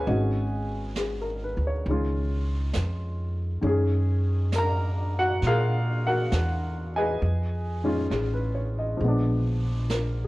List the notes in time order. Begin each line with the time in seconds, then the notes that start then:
Already playing: G#4 B4 C#5 G#5
0.07 G#1 G#3 C#4 D#4 F#4, brush sweep
0.95 G#4, snare, hi-hat pedal
1.21 A#4
1.43 B4
1.57 D2
1.67 C#5
1.84 C#2, brush sweep
1.88 D#3 G#3 C#4 F4
2.73 F2, snare, hi-hat pedal
3.62 F#2 D#3 G#3 C#4, brush sweep
3.67 G#4
4.52 A#4, snare, hi-hat pedal
4.58 A#5
5.19 F#4 F#5
5.42 A#2, brush sweep, snare
5.46 F4 G#4 A#4 F5
6.07 F#4 A#4 F#5
6.32 E2, snare, hi-hat pedal
6.96 G#4 B4 D#5 G#5
7.22 F2, brush sweep
7.84 D#3 G#3 C#4 F4
8.10 A1 G#4, snare, hi-hat pedal
8.34 B4
8.55 C#5
8.79 D#5
8.97 A#1 F3 G#3, brush sweep
9.04 B3 D4
9.90 A#4, snare, hi-hat pedal